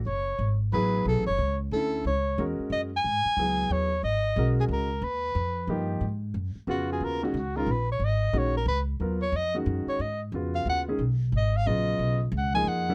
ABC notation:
X:1
M:3/4
L:1/8
Q:"Swing" 1/4=181
K:C#phr
V:1 name="Soprano saxophone"
c3 z B2 | A c2 z A2 | c2 z2 ^d g- | g4 c2 |
^d3 G ^A2 | B4- B z | [K:G#dor] z4 F G | A D F A B c |
d2 c A B z | z c d z2 c | d z2 e f z | z2 d e d2- |
d z f g f2 |]
V:2 name="Grand piano"
z4 [F,B,EG]2- | [F,B,EG] z3 [D,A,CE]2 | z2 [G,CF^A]3 z | z2 [F,B,EG]3 z |
z2 [G,CF^A]3 z | z4 [^E,^A,^D=G]2 | [K:G#dor] z4 [C,B,EF]2- | [C,B,EF] [D,G,CF] z [D,G,CE] z2 |
z2 [D,G,CF] z3 | [F,B,EA] z2 [D,G,CF]3 | z2 [C,B,EF]3 [D,G,CG] | z4 [C,F,B,E]2- |
[C,F,B,E] z2 [E,A,DG]2 [=G,A,C=E] |]
V:3 name="Upright bass" clef=bass
F,,,2 G,,,2 A,,,2 | (3B,,, A,,, F,,, C,,2 D,,2 | C,,2 E,, z F,,2 | G,, z C,,2 ^D,,2 |
G,,,2 B,,,2 C,,2 | ^D,,2 ^E,,2 =G,,2 | [K:G#dor] G,,2 F,, z E,,2 | D,,2 C,,2 A,,,2 |
G,,,2 A,,,2 C,,2 | D,,2 E,,2 F,, z | G,,2 E,,2 D,,2 | B,,,2 G,,,2 A,,,2 |
B,,,2 C,,2 E,,2 |]